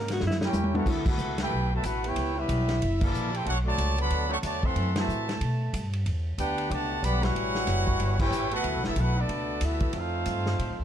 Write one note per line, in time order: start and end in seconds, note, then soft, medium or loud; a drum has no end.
0.00 0.20 G#2 loud
0.00 0.21 C#3 medium
0.00 0.85 A#3 medium
0.00 0.21 D#4 medium
0.00 0.12 A#4 medium
0.08 snare medium
0.08 ride medium
0.13 0.23 F#4 loud
0.20 0.53 F#2 medium
0.20 0.86 D3 medium
0.20 0.85 E4 medium
0.20 snare medium
0.27 0.38 E4 medium
0.27 snare medium
0.41 0.73 C#4 medium
0.41 0.73 E4 medium
0.41 0.73 G4 medium
0.41 0.73 A#4 medium
0.41 0.73 C#5 medium
0.41 0.73 G5 loud
0.41 snare medium
0.53 0.85 E2 loud
0.53 hi-hat pedal medium
0.53 high tom medium
0.64 high tom medium
0.74 0.85 F#3 medium
0.74 0.87 A#3 medium
0.74 0.85 B3 medium
0.74 0.87 C#4 medium
0.74 0.86 D4 medium
0.74 0.86 E4 medium
0.74 0.87 E4 medium
0.74 0.87 F#4 medium
0.74 0.86 A4 medium
0.74 0.87 A#4 medium
0.74 0.87 C#5 medium
0.74 0.87 F#5 medium
0.74 high tom loud
0.86 1.17 D2 medium
0.86 1.06 A3 medium
0.86 1.06 B3 medium
0.86 1.08 B3 medium
0.86 1.07 E4 medium
0.86 1.08 F#4 medium
0.86 1.07 A4 medium
0.86 1.08 E5 medium
0.86 kick medium
0.86 crash medium
1.06 1.38 A3 medium
1.06 1.38 B3 medium
1.06 1.40 E4 medium
1.06 1.39 F#4 medium
1.06 1.40 A4 medium
1.06 1.40 B4 medium
1.06 1.40 F#5 loud
1.06 kick loud
1.06 crash medium
1.18 1.50 C#2 loud
1.18 hi-hat pedal medium
1.38 1.69 A3 medium
1.38 1.69 B3 medium
1.38 1.71 E4 medium
1.38 1.69 G4 medium
1.38 1.71 A4 medium
1.38 1.70 B4 medium
1.38 1.71 G5 loud
1.38 snare medium
1.38 ride medium
1.50 1.82 B1 medium
1.50 kick soft
1.73 1.85 B2 medium
1.73 1.85 F#3 medium
1.73 1.85 A3 medium
1.73 1.85 F#4 medium
1.73 1.84 B4 medium
1.73 1.85 E5 medium
1.73 1.86 A5 loud
1.83 2.15 A1 medium
1.83 2.05 A3 medium
1.83 2.04 B3 medium
1.83 2.05 E4 medium
1.83 2.04 F#4 medium
1.83 2.04 A4 medium
1.83 2.04 B4 medium
1.83 2.05 F#5 loud
1.83 kick soft
1.83 hi-hat pedal medium
1.83 ride medium
2.04 2.36 B3 medium
2.04 2.35 E4 loud
2.04 2.37 E4 medium
2.04 2.37 G4 medium
2.04 2.37 B4 medium
2.04 2.37 C#5 medium
2.04 2.38 G5 loud
2.04 ride medium
2.16 2.48 C#2 medium
2.16 kick soft
2.16 ride medium
2.37 2.81 G3 medium
2.37 2.82 B3 medium
2.37 2.82 C#4 medium
2.37 3.01 E4 medium
2.37 2.82 G4 medium
2.37 2.82 B4 medium
2.37 3.02 E5 loud
2.48 2.80 B1 loud
2.48 kick soft
2.48 hi-hat pedal medium
2.48 ride medium
2.69 snare medium
2.69 ride medium
2.82 3.13 F#1 medium
2.82 kick soft
2.82 ride medium
3.01 3.33 D3 loud
3.01 3.33 E3 loud
3.01 3.33 A#3 loud
3.01 3.35 E4 loud
3.01 3.35 A#4 loud
3.01 3.35 D5 medium
3.01 3.35 A5 loud
3.01 kick loud
3.01 crash medium
3.13 3.45 A#1 loud
3.13 hi-hat pedal medium
3.33 3.47 E4 medium
3.33 3.46 G4 medium
3.33 3.47 A4 medium
3.33 3.47 C5 medium
3.33 3.47 G5 loud
3.33 ride medium
3.45 3.77 B1 medium
3.45 3.55 A3 medium
3.45 3.55 D4 medium
3.45 3.56 D4 medium
3.45 3.54 F#4 medium
3.45 3.57 A4 loud
3.45 3.56 C#5 medium
3.45 3.56 F#5 loud
3.45 kick soft
3.45 ride medium
3.64 3.95 D3 medium
3.64 3.95 F#3 medium
3.64 3.95 A3 medium
3.64 3.97 F#4 loud
3.64 3.97 C#5 medium
3.64 3.96 D5 loud
3.64 3.96 A5 loud
3.78 4.10 C#2 loud
3.78 kick soft
3.78 hi-hat pedal medium
3.78 ride medium
3.98 4.30 D3 loud
3.98 4.28 F#3 loud
3.98 4.30 B3 medium
3.98 4.31 A4 loud
3.98 4.30 D5 loud
3.98 4.31 F#5 loud
3.98 4.32 B5 loud
3.98 ride medium
4.10 4.42 D2 medium
4.10 kick soft
4.10 ride medium
4.29 4.35 F#3 loud
4.29 4.36 A3 loud
4.29 4.36 C#4 loud
4.29 4.37 A4 loud
4.29 4.37 D5 medium
4.29 4.37 F#5 loud
4.29 4.37 C#6 loud
4.40 4.74 E2 loud
4.40 4.61 D3 medium
4.40 4.60 F#3 medium
4.40 4.60 A3 loud
4.40 4.62 F#4 medium
4.40 4.62 D5 loud
4.40 4.62 A5 loud
4.40 kick soft
4.40 hi-hat pedal medium
4.40 ride medium
4.44 4.62 C#5 loud
4.63 4.93 E3 loud
4.63 4.93 A3 loud
4.63 4.95 C4 loud
4.63 4.96 A4 loud
4.63 4.96 E5 loud
4.63 4.96 F#5 loud
4.63 4.96 C6 loud
4.63 kick medium
4.76 5.07 F#2 medium
4.76 kick soft
4.76 ride medium
4.94 5.37 C3 medium
4.94 5.37 E3 medium
4.94 5.88 A3 medium
4.94 5.38 C5 medium
4.94 5.38 E5 medium
4.94 5.90 A5 loud
4.94 snare loud
4.94 ride medium
4.98 5.39 F#4 medium
5.08 5.39 A2 loud
5.08 hi-hat pedal medium
5.29 snare medium
5.29 ride medium
5.41 5.72 B2 medium
5.41 kick soft
5.41 ride medium
5.73 6.04 G2 medium
5.73 kick soft
5.73 hi-hat pedal medium
5.73 ride medium
5.93 ride medium
6.06 6.37 E2 loud
6.06 kick soft
6.06 ride medium
6.38 6.69 D2 loud
6.38 6.68 B3 medium
6.38 6.69 D4 medium
6.38 6.69 D4 loud
6.38 6.68 G4 medium
6.38 6.68 B4 loud
6.38 6.69 F#5 medium
6.38 6.68 G5 loud
6.38 kick soft
6.38 hi-hat pedal medium
6.38 ride medium
6.58 ride medium
6.70 7.02 C#2 loud
6.70 7.03 B2 medium
6.70 7.02 A3 medium
6.70 7.03 D4 loud
6.70 7.02 G4 medium
6.70 7.02 D5 medium
6.70 7.02 F#5 medium
6.70 7.03 A5 loud
6.70 kick soft
6.70 ride medium
7.02 7.34 B1 medium
7.02 7.23 D3 loud
7.02 7.23 G3 loud
7.02 7.22 B3 loud
7.02 7.23 G4 loud
7.02 7.23 D5 loud
7.02 7.22 F#5 loud
7.02 7.23 B5 loud
7.02 kick soft
7.02 hi-hat pedal medium
7.02 ride medium
7.23 8.20 G3 loud
7.23 8.18 C#4 loud
7.23 8.19 E4 loud
7.23 8.19 F#4 loud
7.23 8.19 B4 medium
7.23 8.18 C#5 loud
7.23 8.20 F#5 loud
7.23 snare medium
7.23 ride medium
7.35 7.66 A1 medium
7.35 kick soft
7.35 ride medium
7.55 snare medium
7.67 7.99 F#1 loud
7.67 kick soft
7.67 snare soft
7.67 hi-hat pedal medium
7.67 ride medium
7.87 kick medium
8.00 8.30 G1 medium
8.00 kick soft
8.00 ride medium
8.19 8.49 C#4 loud
8.19 8.50 E4 loud
8.19 8.50 E4 medium
8.19 8.50 G4 loud
8.19 8.50 B4 loud
8.19 8.50 C#5 loud
8.19 8.50 G5 loud
8.19 kick medium
8.19 crash medium
8.31 8.63 A1 medium
8.31 hi-hat pedal medium
8.51 8.82 A3 loud
8.51 8.82 B3 loud
8.51 8.83 E4 medium
8.51 8.82 F#4 loud
8.51 8.82 A4 loud
8.51 8.82 B4 medium
8.51 8.82 F#5 loud
8.51 ride medium
8.64 8.75 D2 medium
8.64 kick soft
8.64 ride medium
8.75 8.86 B1 medium
8.83 8.95 A1 medium
8.83 8.95 A3 medium
8.83 8.95 B3 medium
8.83 8.96 B3 medium
8.83 8.96 E4 medium
8.83 8.97 F#4 medium
8.83 8.96 A4 medium
8.83 8.96 E5 loud
8.83 snare medium
8.96 9.28 B1 loud
8.96 9.16 A3 medium
8.96 9.16 B3 medium
8.96 9.18 E4 medium
8.96 9.17 F#4 medium
8.96 9.17 A4 medium
8.96 9.18 B4 medium
8.96 9.18 F#5 loud
8.96 kick soft
8.96 hi-hat pedal medium
8.96 ride medium
9.17 9.62 A3 medium
9.17 9.61 B3 medium
9.17 9.62 B3 medium
9.17 9.62 D4 medium
9.17 9.62 F#4 medium
9.17 9.62 A4 medium
9.17 9.62 D5 loud
9.29 9.60 C#2 medium
9.29 kick soft
9.29 ride medium
9.61 9.92 D2 medium
9.61 9.93 A3 medium
9.61 9.95 B3 medium
9.61 9.95 E4 medium
9.61 9.95 F#4 medium
9.61 9.95 A4 medium
9.61 9.95 E5 loud
9.61 kick soft
9.61 hi-hat pedal medium
9.61 ride medium
9.80 kick medium
9.80 ride medium
9.93 10.25 F2 medium
9.93 10.84 A3 medium
9.93 10.84 C4 medium
9.93 10.84 D#4 medium
9.93 10.84 F4 medium
9.93 kick soft
9.93 ride medium
9.97 10.84 A4 medium
9.97 10.84 C5 medium
9.97 10.84 F5 medium
10.26 10.57 G2 loud
10.26 kick soft
10.26 hi-hat pedal medium
10.26 ride medium
10.46 snare medium
10.59 10.71 A2 medium
10.59 kick soft
10.59 ride medium
10.70 10.79 F2 medium
10.79 10.84 D#2 medium